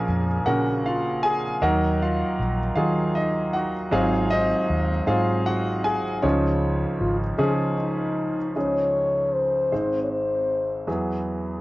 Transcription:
0.00 1.58 A#1 medium
0.00 1.58 A#2 medium
0.00 0.27 F3 medium
0.00 0.27 A#3 medium
0.00 0.28 C#4 medium
0.00 1.25 G#4 medium
0.00 0.27 A#4 medium
0.00 1.63 C#5 medium
0.00 0.86 F5 medium
0.00 1.23 G#5 medium
0.00 1.63 A#5 medium
0.08 0.38 F2 medium
0.46 1.37 A#2 medium
0.46 1.43 C#3 medium
0.46 1.43 A#3 medium
0.46 1.43 C#4 medium
0.46 0.83 F#4 medium
0.46 1.43 A#4 medium
0.46 0.86 F#5 medium
0.86 1.22 F4 medium
0.86 1.21 F5 medium
1.23 1.60 G#4 medium
1.23 1.63 G#5 medium
1.62 2.22 D#2 medium
1.62 3.89 D#2 medium
1.62 3.89 D#3 medium
1.62 2.58 F#3 medium
1.62 2.58 D#4 medium
1.62 1.99 F#4 medium
1.62 2.58 A#4 medium
1.62 2.02 F#5 medium
2.02 2.37 F4 medium
2.02 2.37 F5 medium
2.39 2.69 A#1 medium
2.76 3.67 D#3 medium
2.76 3.73 F#3 medium
2.76 3.16 D#4 medium
2.76 3.13 F4 medium
2.76 3.73 G#4 medium
2.76 3.16 F5 medium
3.15 3.52 D#4 medium
3.15 3.55 D#5 medium
3.53 3.91 F#4 medium
3.53 3.89 F#5 medium
3.91 6.19 G#1 medium
3.91 4.53 G#1 medium
3.91 6.19 G#2 medium
3.91 4.88 F#3 medium
3.91 4.88 C4 medium
3.91 4.31 D#4 medium
3.91 4.89 G#4 medium
3.91 4.30 C5 medium
3.91 4.32 F5 medium
3.96 4.30 F4 medium
4.30 5.05 D#4 medium
4.30 5.05 C5 medium
4.30 5.10 D#5 loud
4.70 5.00 D#2 medium
5.07 5.98 G#2 medium
5.07 6.04 F#3 medium
5.07 6.04 C4 medium
5.07 6.04 D#4 medium
5.07 5.45 F4 medium
5.07 5.84 G#4 medium
5.07 5.47 F5 medium
5.46 5.83 F#4 medium
5.46 5.86 F#5 medium
5.84 6.21 G#4 medium
5.84 6.24 G#5 medium
6.22 8.51 C#2 medium
6.22 6.84 C#2 medium
6.22 8.51 C#3 medium
6.22 7.20 F3 medium
6.22 7.37 C#4 medium
6.22 7.20 D#4 medium
6.22 7.74 F4 medium
6.22 7.37 G#4 medium
6.22 7.74 C#5 medium
7.01 7.31 G#1 medium
7.01 7.17 F4 medium
7.38 8.30 C#3 medium
7.38 8.36 F3 medium
7.38 8.36 C#4 medium
7.38 8.36 D#4 medium
7.38 7.54 G#4 medium
7.38 8.36 G#4 medium
7.78 8.52 D#4 medium
8.56 9.68 C#2 soft
8.56 9.68 C#3 soft
8.56 9.72 F3 soft
8.56 9.72 C#4 soft
8.56 9.71 D#4 soft
8.56 9.72 G#4 soft
8.56 9.35 C#5 medium
9.33 10.03 C5 medium
9.72 10.84 G#1 soft
9.72 10.84 G#2 soft
9.72 10.88 G#3 soft
9.72 10.88 C4 soft
9.72 10.88 D#4 soft
9.72 10.88 C5 soft
10.04 10.13 C#5 soft
10.12 10.88 C5 medium
10.87 11.61 E2 soft
10.87 11.61 F#3 soft
10.87 11.61 B3 soft
10.87 11.61 E4 soft
10.87 11.61 G#4 soft

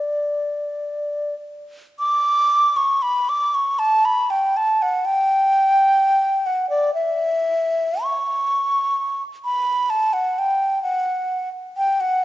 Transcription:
0.00 1.35 D5 soft
1.99 2.78 D6 loud
2.76 3.04 C#6 loud
3.02 3.31 B5 loud
3.29 3.56 D6 loud
3.54 3.80 C#6 medium
3.79 4.07 A5 loud
4.05 4.32 B5 loud
4.30 4.58 G5 medium
4.57 4.84 A5 loud
4.82 5.07 F#5 medium
5.05 6.48 G5 loud
6.46 6.69 F#5 medium
6.70 6.93 D5 medium
6.94 8.05 E5 medium
8.03 9.23 C#6 medium
9.45 9.91 B5 medium
9.90 10.15 A5 medium
10.13 10.40 F#5 medium
10.39 10.82 G5 medium
10.83 11.49 F#5 medium
11.77 12.02 G5 loud
12.00 12.24 F#5 loud

